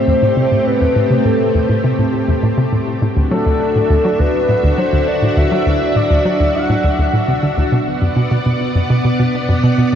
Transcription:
0.00 2.98 A3 medium
0.00 2.98 C4 medium
0.00 2.98 G4 medium
0.00 0.66 C5 loud
0.08 0.13 E2 medium
0.22 0.31 A2 loud
0.37 0.51 C3 medium
0.52 0.61 A2 medium
0.67 1.27 B4 loud
0.81 0.87 E2 medium
0.96 1.05 A2 loud
1.10 1.24 C3 medium
1.25 1.34 A2 medium
1.25 1.84 A4 medium
1.55 1.60 E2 medium
1.69 1.79 A2 medium
1.84 1.98 C3 medium
1.99 2.08 A2 medium
2.28 2.34 E2 medium
2.43 2.52 A2 loud
2.58 2.71 C3 medium
2.73 2.82 A2 medium
3.02 3.07 A2 medium
3.02 7.68 D4 medium
3.02 7.68 F#4 medium
3.02 7.68 E5 medium
3.17 3.26 D2 medium
3.31 3.45 F#3 medium
3.31 4.22 A4 medium
3.46 3.55 D2 medium
3.76 3.81 A2 medium
3.90 3.99 D2 loud
4.05 4.18 F#3 loud
4.20 4.29 D2 medium
4.20 4.80 B4 medium
4.49 4.54 A2 medium
4.64 4.73 D2 loud
4.78 4.92 F#3 medium
4.78 5.10 C5 medium
4.93 5.02 D2 medium
5.08 5.37 D5 medium
5.22 5.28 A2 medium
5.37 5.46 D2 loud
5.37 5.98 E5 loud
5.52 5.65 F#3 loud
5.67 5.76 D2 medium
5.96 6.01 A2 medium
5.96 6.57 D5 loud
6.11 6.20 D2 loud
6.25 6.39 F#3 loud
6.40 6.49 D2 medium
6.55 7.43 F#5 loud
6.69 6.75 A2 medium
6.84 6.90 D2 medium
6.99 7.08 D2 medium
7.14 7.27 A2 medium
7.28 7.34 C3 medium
7.43 7.52 D3 medium
7.57 7.63 D2 medium
7.72 7.81 B2 medium
7.72 9.95 B3 medium
7.72 9.95 D5 medium
7.72 9.95 F#5 medium
8.02 8.07 F#2 medium
8.16 8.26 B2 loud
8.31 8.37 B2 medium
8.46 8.55 B2 medium
8.75 8.81 F#2 medium
8.90 8.99 B2 medium
9.05 9.10 B2 medium
9.20 9.29 B2 medium
9.49 9.54 F#2 medium
9.64 9.73 B2 loud
9.78 9.84 B2 medium

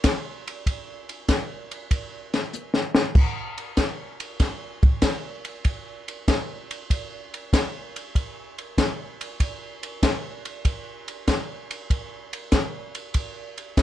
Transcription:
0.04 kick soft
0.04 snare medium
0.04 hi-hat pedal medium
0.04 ride medium
0.47 ride soft
0.66 kick soft
0.66 ride medium
1.09 ride soft
1.29 kick soft
1.29 snare medium
1.29 hi-hat pedal medium
1.29 ride medium
1.71 ride soft
1.91 kick soft
1.91 ride soft
2.34 snare soft
2.34 ride soft
2.53 hi-hat pedal medium
2.74 snare soft
2.95 snare medium
3.15 kick medium
3.15 crash medium
3.58 ride soft
3.77 kick soft
3.77 snare medium
3.77 hi-hat pedal soft
3.77 ride medium
4.20 ride soft
4.40 kick soft
4.40 snare soft
4.40 ride medium
4.83 kick soft
4.83 ride soft
5.02 kick soft
5.02 snare medium
5.02 hi-hat pedal medium
5.02 ride medium
5.45 ride soft
5.65 kick soft
5.65 ride medium
6.08 ride soft
6.28 kick soft
6.28 snare medium
6.28 hi-hat pedal soft
6.28 ride medium
6.71 ride soft
6.90 kick soft
6.90 ride medium
7.34 ride soft
7.53 kick soft
7.53 snare medium
7.53 hi-hat pedal soft
7.53 ride medium
7.96 ride soft
8.15 kick soft
8.15 ride soft
8.58 ride soft
8.78 kick soft
8.78 snare medium
8.78 hi-hat pedal soft
8.78 ride medium
9.21 ride soft
9.40 kick soft
9.40 ride medium
9.83 ride soft
10.03 kick soft
10.03 snare medium
10.03 hi-hat pedal medium
10.03 ride medium
10.45 ride soft
10.65 kick soft
10.65 ride medium
11.08 ride soft
11.28 kick soft
11.28 snare medium
11.28 hi-hat pedal soft
11.28 ride medium
11.71 ride soft
11.90 kick soft
11.90 ride medium
12.33 ride soft
12.52 kick soft
12.52 snare medium
12.52 hi-hat pedal medium
12.52 ride medium
12.95 ride soft
13.14 kick soft
13.14 ride medium
13.58 ride soft
13.77 kick soft
13.77 snare medium
13.77 hi-hat pedal soft
13.77 ride soft

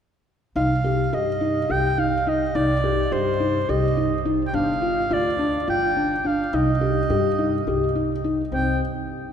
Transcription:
0.56 1.05 C2 medium
0.56 0.72 D#4 medium
0.56 1.16 F5 medium
0.84 1.00 G4 medium
1.13 1.62 G2 medium
1.13 1.29 G4 medium
1.13 1.73 D#5 medium
1.41 1.57 D#4 medium
1.69 2.44 C2 medium
1.69 1.85 G4 medium
1.69 2.00 G5 medium
1.98 2.14 D#4 medium
1.98 2.30 F5 medium
2.27 2.43 D#4 medium
2.27 2.57 D#5 medium
2.55 3.04 C2 medium
2.55 2.71 D#4 medium
2.55 3.14 D5 medium
2.84 2.99 G4 medium
3.12 3.61 G2 medium
3.12 3.28 G4 medium
3.12 3.71 C5 medium
3.40 3.56 D#4 medium
3.69 4.43 C2 medium
3.69 3.85 G4 medium
3.69 4.33 D#5 medium
3.97 4.13 D#4 medium
4.25 4.41 D#4 medium
4.47 4.56 G5 medium
4.53 5.03 G1 medium
4.53 4.70 D4 medium
4.53 5.15 F5 medium
4.82 4.98 F4 medium
5.11 5.60 D2 medium
5.11 5.27 F4 medium
5.11 5.69 D5 medium
5.39 5.55 D4 medium
5.67 6.42 G1 medium
5.67 5.83 F4 medium
5.67 6.28 G5 medium
5.96 6.12 D4 medium
6.25 6.40 D4 medium
6.25 6.56 F5 medium
6.53 7.02 C2 medium
6.53 6.69 D#4 medium
6.53 8.25 D#5 medium
6.81 6.97 G4 medium
7.10 7.59 G2 medium
7.10 7.26 G4 medium
7.38 7.54 D#4 medium
7.67 8.41 C2 medium
7.67 7.83 G4 medium
7.95 8.11 D#4 medium
8.24 8.40 D#4 medium
8.52 8.79 C2 medium
8.52 8.79 C4 medium
8.52 8.80 G5 medium

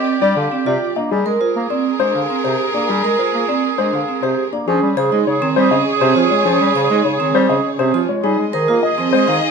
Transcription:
0.00 0.12 C4 medium
0.00 0.92 G4 medium
0.00 0.92 D5 medium
0.00 0.12 D#5 medium
0.22 0.33 G3 medium
0.22 0.41 D4 medium
0.22 0.41 D5 loud
0.37 0.48 D3 medium
0.37 0.56 F5 medium
0.52 0.71 C4 medium
0.66 0.78 C3 medium
0.66 0.86 F4 medium
0.66 0.86 D5 medium
0.96 1.07 A#3 medium
0.96 1.15 D4 medium
0.96 1.16 D#5 medium
1.11 1.22 G3 medium
1.11 4.48 G#4 medium
1.11 4.49 G#4 medium
1.11 1.30 G#4 medium
1.11 4.49 A#4 medium
1.26 1.37 G#3 medium
1.26 1.45 A#4 medium
1.41 1.60 F4 medium
1.41 1.60 C5 medium
1.56 1.67 A#3 medium
1.70 1.90 C4 medium
1.70 1.90 D5 medium
2.00 2.11 G#3 medium
2.00 2.19 D4 medium
2.00 2.19 C5 medium
2.15 2.26 D3 medium
2.15 2.34 F5 medium
2.30 2.49 C4 medium
2.44 2.56 C3 medium
2.44 2.64 G4 medium
2.44 2.64 C5 medium
2.74 2.86 A#3 medium
2.74 2.94 D4 medium
2.74 2.94 D5 medium
2.89 3.00 G3 medium
2.89 3.09 G#4 medium
3.04 3.15 G#3 medium
3.04 3.23 A#4 medium
3.19 3.38 F4 medium
3.19 3.38 C5 medium
3.34 3.45 A#3 medium
3.48 3.68 C4 medium
3.48 3.68 D5 medium
3.78 3.90 G#3 medium
3.78 3.98 D4 medium
3.78 3.98 C5 medium
3.93 4.04 D3 medium
3.93 4.13 F5 medium
4.08 4.27 C4 medium
4.23 4.34 C3 medium
4.23 4.42 G4 medium
4.23 4.42 C5 medium
4.53 4.64 A#3 medium
4.53 4.72 D4 medium
4.53 4.72 D5 medium
4.67 4.78 F3 loud
4.67 4.87 C#4 medium
4.67 4.89 G#4 soft
4.67 8.05 G#4 medium
4.67 4.87 G#4 medium
4.67 8.05 C#5 medium
4.82 4.93 G3 medium
4.97 5.08 C#3 medium
4.97 5.16 G#4 loud
4.97 5.20 G#4 medium
4.97 5.16 C5 medium
5.12 5.23 G#3 medium
5.12 5.31 D#4 medium
5.27 5.38 C#3 medium
5.27 5.51 G#4 medium
5.27 5.46 C#5 medium
5.42 5.53 D#3 medium
5.42 5.61 C4 loud
5.56 5.68 G3 loud
5.56 5.76 C5 loud
5.60 5.82 G#4 medium
5.71 5.83 C#3 medium
5.71 5.91 C#4 medium
5.71 5.91 D#5 medium
5.92 6.13 G#4 medium
6.01 6.12 C3 loud
6.01 6.20 C4 medium
6.01 6.20 C5 medium
6.16 6.27 F3 medium
6.16 6.35 F4 medium
6.22 6.44 G#4 medium
6.31 6.42 G#3 medium
6.31 6.50 C#5 medium
6.45 6.57 F3 medium
6.45 6.65 C#4 medium
6.45 6.65 G#4 medium
6.53 6.75 G#4 medium
6.60 6.71 G3 medium
6.75 6.86 C#3 medium
6.75 6.95 G#4 medium
6.75 6.95 C5 medium
6.84 7.06 G#4 medium
6.90 7.01 G#3 medium
6.90 7.10 D#4 medium
7.05 7.16 C#3 medium
7.05 7.24 C#5 medium
7.16 7.31 D#3 medium
7.16 7.37 G#4 medium
7.20 7.39 C4 medium
7.34 7.46 G3 medium
7.34 7.54 C5 loud
7.47 7.61 C#3 medium
7.47 7.69 C#4 medium
7.47 7.68 G#4 medium
7.47 7.69 D#5 medium
7.78 7.90 C3 medium
7.78 7.99 C4 medium
7.78 8.00 G#4 soft
7.78 7.99 C5 medium
7.94 8.05 F3 medium
7.94 8.14 F4 medium
8.09 8.20 G#3 medium
8.09 8.28 C#5 medium
8.23 8.35 G3 medium
8.23 8.43 D#4 medium
8.23 8.45 G#4 soft
8.23 8.43 G#4 medium
8.23 9.51 G#4 medium
8.23 9.51 D#5 medium
8.39 8.50 G#3 medium
8.53 8.65 D#3 medium
8.53 8.76 G#4 medium
8.53 8.73 A#4 loud
8.53 8.73 C5 medium
8.68 8.80 A#3 medium
8.68 8.88 F4 medium
8.83 9.07 G#4 medium
8.83 9.02 D#5 medium
8.98 9.10 F3 medium
8.98 9.17 C4 medium
9.13 9.24 G#3 medium
9.13 9.38 G#4 medium
9.13 9.32 C5 loud
9.27 9.39 D#3 medium
9.27 9.47 D#4 medium
9.27 9.47 F5 medium
9.48 9.51 G#4 medium

